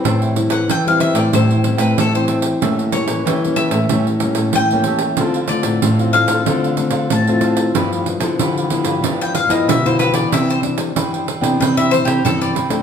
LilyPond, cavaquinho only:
\new Staff \with { instrumentName = "Cavaquinho" } { \time 4/4 \key a \minor \tempo 4 = 94 <a' c'' e'' g''>16 <c'' e'' g''>16 r8 <a' c'' e'' g''>16 <c'' e'' g''>16 <a' c'' e'' g''>16 <c'' e'' g''>16 <a' c'' e'' g''>16 <c'' e'' g''>16 r16 <c'' e'' g''>8 <c'' e'' g''>16 <a' c'' e'' g''>16 <c'' e'' g''>16 | <g' a' cis'' e''>16 <a' cis'' e''>16 r8 <g' a' cis'' e''>16 <a' cis'' e''>16 <g' a' cis'' e''>16 <a' cis'' e''>16 <g' a' cis'' e''>16 <a' cis'' e''>16 r16 <a' cis'' e''>8 <a' cis'' e''>16 <g' a' cis'' e''>16 <a' cis'' e''>16 | <d' a' c'' f''>16 <a' c'' f''>16 r8 <d' a' c'' f''>16 <a' c'' f''>16 <d' a' c'' f''>16 <a' c'' f''>16 <d' a' c'' f''>16 <a' c'' f''>16 r16 <a' c'' f''>8 <a' c'' f''>16 <d' a' c'' f''>16 <a' c'' f''>16 | <d' g' b' f''>16 <g' b' f''>16 r8 <d' g' b' f''>16 <g' b' f''>16 <d' g' b' f''>16 <g' b' f''>16 <d' g' b' f''>16 <g' b' f''>16 r16 <g' b' f''>8 <g' b' f''>16 <d' g' b' f''>16 <g' b' f''>16 |
<e' b' c'' g''>16 <b' c'' g''>16 r8 <e' b' c'' g''>16 <b' c'' g''>16 <e' b' c'' g''>16 <b' c'' g''>16 <e' b' c'' g''>16 <b' c'' g''>16 r16 <b' c'' g''>8 <b' c'' g''>16 <e' b' c'' g''>16 <b' c'' g''>16 | }